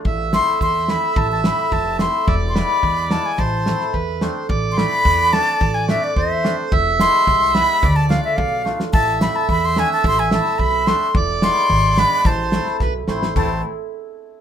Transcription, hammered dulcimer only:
X:1
M:2/4
L:1/16
Q:1/4=108
K:Am
V:1 name="Hammered dulcimer"
z2 [A,CE] z3 [A,CE] z | z2 [A,CE] z3 [A,CE] z | z2 [^G,B,E] z3 [G,B,E] z | z2 [A,CE] z3 [A,CD] z |
z2 [A,CE] z3 [A,CD] z | z2 [A,CD] z3 [A,CD] z | z2 [^G,B,E] z3 [G,B,E] z | z2 [A,DF] z3 [A,DF] z |
z2 [A,CE] z3 [A,CD] z | z2 [A,CE] z3 [A,CD] z | z2 [^G,B,E] z3 [G,B,D] z | z2 [A,CE] z3 [A,CE] z |
[A,CE]2 z6 |]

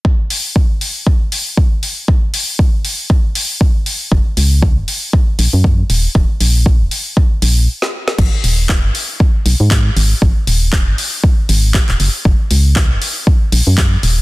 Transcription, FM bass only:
X:1
M:4/4
L:1/16
Q:"Swing 16ths" 1/4=118
K:F#mix
V:1 name="FM bass" clef=bass
z16 | z16 | F,,, z C,,3 F,,, z4 A,,, F,,2 z D,,, z | D,,, z A,,,3 D,,, z4 A,,,2 z4 |
G,,, z D,,,3 G,,, z4 B,,, G,,2 z G,,, z | G,,, z D,,,3 G,,, z4 G,,,2 z D,,, F,,, z | F,,, z C,,3 F,,, z4 A,,, F,,2 z D,,, z |]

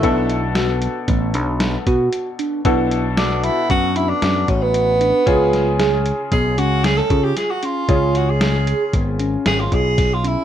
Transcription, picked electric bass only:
X:1
M:5/4
L:1/8
Q:1/4=114
K:Bdor
V:1 name="Picked electric bass" clef=bass
B,,,4 A,,, B,,,2 B,, z2 | B,,,4 F,,2 F,, A,,,3 | C,,4 B,,, C,,2 C, z2 | C,,4 G,,,2 G,,, B,,,3 |]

